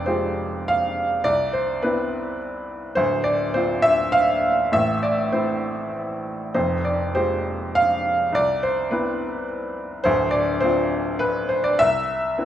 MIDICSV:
0, 0, Header, 1, 2, 480
1, 0, Start_track
1, 0, Key_signature, 0, "major"
1, 0, Tempo, 595238
1, 1012, Time_signature, 3, 2, 24, 8
1, 1012, Tempo, 576369
1, 3412, Tempo, 603015
1, 6292, Tempo, 578592
1, 10187, End_track
2, 0, Start_track
2, 0, Title_t, "Upright piano"
2, 0, Program_c, 0, 0
2, 0, Control_c, 0, 64, 127
2, 0, Note_on_c, 0, 29, 53
2, 0, Note_on_c, 0, 41, 59
2, 0, Note_on_c, 0, 72, 73
2, 0, Note_on_c, 0, 74, 79
2, 48, Note_off_c, 0, 72, 0
2, 48, Note_on_c, 0, 72, 67
2, 56, Note_on_c, 0, 65, 38
2, 58, Note_on_c, 0, 56, 42
2, 65, Note_on_c, 0, 67, 51
2, 549, Note_on_c, 0, 77, 95
2, 550, Note_off_c, 0, 72, 0
2, 983, Note_off_c, 0, 41, 0
2, 984, Note_off_c, 0, 29, 0
2, 985, Note_off_c, 0, 65, 0
2, 986, Note_off_c, 0, 56, 0
2, 986, Note_off_c, 0, 77, 0
2, 990, Note_off_c, 0, 67, 0
2, 1001, Note_off_c, 0, 74, 0
2, 1001, Note_on_c, 0, 74, 94
2, 1006, Note_on_c, 0, 36, 65
2, 1023, Control_c, 0, 64, 0
2, 1157, Control_c, 0, 64, 127
2, 1244, Note_on_c, 0, 72, 74
2, 1257, Note_off_c, 0, 74, 0
2, 1473, Note_off_c, 0, 72, 0
2, 1486, Note_on_c, 0, 71, 69
2, 1492, Note_on_c, 0, 59, 44
2, 1498, Note_on_c, 0, 64, 49
2, 1499, Note_on_c, 0, 60, 46
2, 1933, Note_off_c, 0, 71, 0
2, 2410, Note_off_c, 0, 36, 0
2, 2415, Note_off_c, 0, 59, 0
2, 2419, Note_off_c, 0, 60, 0
2, 2419, Note_off_c, 0, 64, 0
2, 2427, Note_on_c, 0, 72, 86
2, 2436, Note_on_c, 0, 26, 58
2, 2437, Note_on_c, 0, 38, 69
2, 2458, Control_c, 0, 64, 0
2, 2619, Control_c, 0, 64, 127
2, 2663, Note_on_c, 0, 74, 86
2, 2685, Note_off_c, 0, 72, 0
2, 2916, Note_on_c, 0, 72, 83
2, 2923, Note_off_c, 0, 74, 0
2, 2923, Note_on_c, 0, 62, 43
2, 2926, Note_on_c, 0, 60, 45
2, 2933, Note_on_c, 0, 65, 54
2, 3151, Note_on_c, 0, 76, 99
2, 3171, Note_off_c, 0, 72, 0
2, 3399, Note_on_c, 0, 77, 105
2, 3412, Note_off_c, 0, 76, 0
2, 3847, Note_off_c, 0, 77, 0
2, 3849, Note_off_c, 0, 26, 0
2, 3849, Note_off_c, 0, 38, 0
2, 3855, Note_off_c, 0, 62, 0
2, 3856, Note_off_c, 0, 60, 0
2, 3860, Note_off_c, 0, 65, 0
2, 3876, Note_on_c, 0, 45, 62
2, 3880, Note_on_c, 0, 33, 65
2, 3883, Note_on_c, 0, 76, 96
2, 3895, Control_c, 0, 64, 0
2, 4048, Control_c, 0, 64, 127
2, 4106, Note_off_c, 0, 76, 0
2, 4121, Note_on_c, 0, 74, 73
2, 4347, Note_off_c, 0, 74, 0
2, 4357, Note_on_c, 0, 57, 41
2, 4357, Note_on_c, 0, 72, 70
2, 4361, Note_on_c, 0, 60, 39
2, 4365, Note_on_c, 0, 64, 43
2, 4815, Note_off_c, 0, 72, 0
2, 5300, Note_off_c, 0, 45, 0
2, 5302, Note_off_c, 0, 33, 0
2, 5302, Note_off_c, 0, 57, 0
2, 5304, Note_off_c, 0, 60, 0
2, 5307, Note_off_c, 0, 64, 0
2, 5328, Note_on_c, 0, 72, 81
2, 5329, Note_on_c, 0, 41, 60
2, 5332, Note_on_c, 0, 29, 55
2, 5346, Control_c, 0, 64, 0
2, 5484, Control_c, 0, 64, 127
2, 5556, Note_off_c, 0, 72, 0
2, 5569, Note_on_c, 0, 74, 70
2, 5809, Note_on_c, 0, 56, 42
2, 5809, Note_on_c, 0, 72, 82
2, 5812, Note_on_c, 0, 67, 50
2, 5815, Note_on_c, 0, 65, 38
2, 5820, Note_off_c, 0, 74, 0
2, 6257, Note_off_c, 0, 72, 0
2, 6290, Note_on_c, 0, 77, 100
2, 6742, Note_off_c, 0, 41, 0
2, 6744, Note_off_c, 0, 29, 0
2, 6744, Note_off_c, 0, 77, 0
2, 6745, Note_off_c, 0, 56, 0
2, 6747, Note_off_c, 0, 67, 0
2, 6749, Note_off_c, 0, 65, 0
2, 6766, Note_on_c, 0, 36, 64
2, 6784, Note_on_c, 0, 74, 97
2, 6791, Control_c, 0, 64, 0
2, 6944, Control_c, 0, 64, 127
2, 7018, Note_on_c, 0, 72, 77
2, 7029, Note_off_c, 0, 74, 0
2, 7249, Note_on_c, 0, 71, 68
2, 7252, Note_on_c, 0, 59, 45
2, 7260, Note_on_c, 0, 60, 44
2, 7260, Note_on_c, 0, 64, 50
2, 7266, Note_off_c, 0, 72, 0
2, 7695, Note_off_c, 0, 71, 0
2, 8163, Note_off_c, 0, 36, 0
2, 8171, Note_off_c, 0, 59, 0
2, 8176, Note_off_c, 0, 60, 0
2, 8176, Note_off_c, 0, 64, 0
2, 8185, Note_on_c, 0, 72, 95
2, 8196, Note_on_c, 0, 38, 76
2, 8200, Note_on_c, 0, 26, 69
2, 8214, Control_c, 0, 64, 0
2, 8355, Control_c, 0, 64, 127
2, 8410, Note_on_c, 0, 74, 86
2, 8437, Note_off_c, 0, 72, 0
2, 8656, Note_on_c, 0, 72, 89
2, 8669, Note_off_c, 0, 74, 0
2, 8680, Note_on_c, 0, 60, 54
2, 8688, Note_on_c, 0, 65, 49
2, 8689, Note_on_c, 0, 62, 43
2, 9111, Note_off_c, 0, 72, 0
2, 9144, Note_on_c, 0, 71, 90
2, 9390, Note_on_c, 0, 72, 76
2, 9397, Note_off_c, 0, 71, 0
2, 9505, Note_off_c, 0, 72, 0
2, 9513, Note_on_c, 0, 74, 89
2, 9601, Note_off_c, 0, 38, 0
2, 9603, Note_off_c, 0, 26, 0
2, 9611, Note_off_c, 0, 60, 0
2, 9615, Note_off_c, 0, 65, 0
2, 9616, Note_off_c, 0, 62, 0
2, 9628, Note_off_c, 0, 74, 0
2, 9639, Note_on_c, 0, 76, 107
2, 9649, Note_on_c, 0, 36, 65
2, 9650, Control_c, 0, 64, 0
2, 9813, Control_c, 0, 64, 127
2, 10129, Note_on_c, 0, 71, 44
2, 10132, Note_on_c, 0, 60, 43
2, 10133, Note_on_c, 0, 64, 46
2, 10187, Note_off_c, 0, 36, 0
2, 10187, Note_off_c, 0, 60, 0
2, 10187, Note_off_c, 0, 64, 0
2, 10187, Note_off_c, 0, 71, 0
2, 10187, Note_off_c, 0, 76, 0
2, 10187, End_track
0, 0, End_of_file